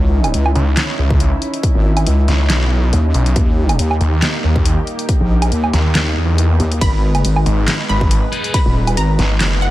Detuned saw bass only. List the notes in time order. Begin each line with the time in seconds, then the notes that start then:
0.56 C#2
0.99 C#2
2.28 C#2
2.50 B1
3.14 B1
4.01 D#2
4.44 D#2
5.73 D#2
5.95 D#2
6.17 E2
7.46 G#1
7.89 G#1
9.19 G#1
9.40 F#1